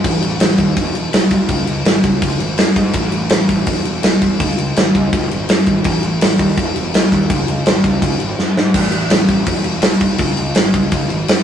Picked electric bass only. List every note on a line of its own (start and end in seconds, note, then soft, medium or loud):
0.04 0.18 A1 loud
0.23 0.37 A1 medium
0.41 0.54 A1 loud
0.59 0.72 D#2 medium
0.77 0.90 E1 loud
0.95 1.08 E1 medium
1.14 1.27 B1 medium
1.31 1.45 B1 loud
1.49 1.63 C#2 loud
1.68 1.81 C#2 medium
1.85 1.99 G#1 medium
2.04 2.18 C#2 medium
2.22 2.36 C#2 medium
2.39 2.53 G#1 medium
2.58 2.71 F#2 medium
2.76 2.90 G#2 medium
2.94 3.08 A1 loud
3.12 3.26 A1 medium
3.31 3.45 A1 medium
3.50 3.63 A1 loud
3.67 3.81 E1 loud
3.85 3.99 E1 medium
4.03 4.17 B1 medium
4.22 4.36 E1 medium
4.40 4.54 C#2 loud
4.58 4.71 C#2 medium
4.76 4.90 G#1 loud
4.95 5.08 C#2 loud
5.13 5.27 C#2 loud
5.31 5.44 G#1 loud
5.49 5.62 F#2 medium
5.67 5.80 G#1 medium
5.86 5.99 A1 loud
6.03 6.17 A1 loud
6.22 6.35 A1 loud
6.39 6.53 D#2 loud
6.57 6.71 E1 loud
6.76 6.90 E1 loud
6.93 7.07 B1 medium
7.12 7.26 D#2 loud
7.30 7.43 C#2 loud
7.48 7.62 C#2 medium
7.67 7.80 G#1 medium
7.84 7.98 C#2 medium
8.02 8.16 C#2 medium
8.21 8.34 G#1 medium
8.40 8.53 F#2 medium
8.58 8.71 G#2 medium
8.75 8.88 A1 loud
8.93 9.07 A1 medium
9.11 9.24 A1 medium
9.28 9.42 A1 loud
9.47 9.61 E1 loud
9.65 9.79 E1 loud
9.83 9.97 B1 loud
10.01 10.15 B1 medium
10.19 10.33 C#2 loud
10.39 10.52 C#2 loud
10.56 10.70 G#1 loud
10.74 10.88 C#2 loud
10.92 11.05 C#2 loud
11.11 11.24 G#1 medium
11.29 11.42 F#2 medium